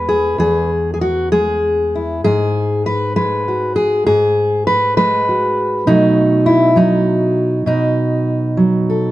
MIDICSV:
0, 0, Header, 1, 2, 480
1, 0, Start_track
1, 0, Key_signature, 4, "major"
1, 0, Tempo, 617920
1, 299, Time_signature, 6, 3, 24, 8
1, 2220, Tempo, 603622
1, 7196, End_track
2, 0, Start_track
2, 0, Title_t, "Steel-string acoustic guitar"
2, 0, Program_c, 0, 25
2, 0, Note_on_c, 0, 40, 80
2, 0, Note_on_c, 0, 56, 62
2, 0, Note_on_c, 0, 71, 109
2, 67, Note_on_c, 0, 68, 91
2, 288, Note_off_c, 0, 40, 0
2, 297, Note_on_c, 0, 40, 78
2, 299, Note_off_c, 0, 68, 0
2, 309, Note_on_c, 0, 68, 101
2, 541, Note_off_c, 0, 71, 0
2, 719, Note_off_c, 0, 68, 0
2, 728, Note_on_c, 0, 68, 66
2, 781, Note_off_c, 0, 68, 0
2, 787, Note_on_c, 0, 66, 89
2, 811, Note_off_c, 0, 56, 0
2, 1021, Note_off_c, 0, 66, 0
2, 1025, Note_on_c, 0, 68, 96
2, 1028, Note_on_c, 0, 56, 57
2, 1518, Note_on_c, 0, 64, 45
2, 1734, Note_off_c, 0, 68, 0
2, 1740, Note_off_c, 0, 64, 0
2, 1743, Note_on_c, 0, 68, 96
2, 1744, Note_off_c, 0, 40, 0
2, 1747, Note_on_c, 0, 44, 69
2, 2219, Note_off_c, 0, 68, 0
2, 2222, Note_on_c, 0, 71, 95
2, 2450, Note_off_c, 0, 71, 0
2, 2457, Note_off_c, 0, 56, 0
2, 2460, Note_on_c, 0, 56, 60
2, 2461, Note_on_c, 0, 71, 94
2, 2715, Note_on_c, 0, 66, 46
2, 2932, Note_off_c, 0, 71, 0
2, 2935, Note_on_c, 0, 68, 89
2, 3153, Note_off_c, 0, 56, 0
2, 3154, Note_off_c, 0, 44, 0
2, 3170, Note_off_c, 0, 68, 0
2, 3180, Note_on_c, 0, 68, 105
2, 3182, Note_on_c, 0, 44, 77
2, 3203, Note_off_c, 0, 66, 0
2, 3657, Note_off_c, 0, 68, 0
2, 3660, Note_on_c, 0, 71, 100
2, 3890, Note_off_c, 0, 71, 0
2, 3900, Note_on_c, 0, 71, 98
2, 3905, Note_on_c, 0, 56, 66
2, 4153, Note_on_c, 0, 66, 49
2, 4590, Note_off_c, 0, 44, 0
2, 4591, Note_off_c, 0, 56, 0
2, 4614, Note_off_c, 0, 66, 0
2, 4614, Note_on_c, 0, 47, 85
2, 4617, Note_off_c, 0, 71, 0
2, 4617, Note_on_c, 0, 63, 100
2, 4623, Note_on_c, 0, 54, 56
2, 4630, Note_on_c, 0, 57, 54
2, 5085, Note_on_c, 0, 64, 89
2, 5318, Note_off_c, 0, 54, 0
2, 5321, Note_off_c, 0, 63, 0
2, 5321, Note_on_c, 0, 54, 66
2, 5325, Note_off_c, 0, 64, 0
2, 5330, Note_on_c, 0, 63, 85
2, 6020, Note_off_c, 0, 57, 0
2, 6037, Note_off_c, 0, 47, 0
2, 6039, Note_off_c, 0, 63, 0
2, 6040, Note_on_c, 0, 47, 78
2, 6048, Note_on_c, 0, 63, 87
2, 6761, Note_off_c, 0, 54, 0
2, 6764, Note_on_c, 0, 54, 60
2, 7022, Note_on_c, 0, 69, 46
2, 7196, Note_off_c, 0, 47, 0
2, 7196, Note_off_c, 0, 54, 0
2, 7196, Note_off_c, 0, 63, 0
2, 7196, Note_off_c, 0, 69, 0
2, 7196, End_track
0, 0, End_of_file